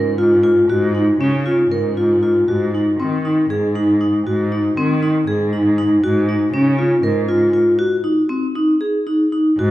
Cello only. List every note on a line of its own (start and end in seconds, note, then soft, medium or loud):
0.00 0.61 G#2 medium
0.69 1.15 G#2 medium
1.20 1.66 C#3 medium
1.71 2.40 G#2 medium
2.48 2.94 G#2 medium
3.00 3.46 D#3 medium
3.51 4.19 G#2 medium
4.27 4.73 G#2 medium
4.78 5.23 D#3 medium
5.28 5.96 G#2 medium
6.03 6.49 G#2 medium
6.53 6.99 C#3 medium
7.04 7.72 G#2 medium
9.58 9.71 G#2 medium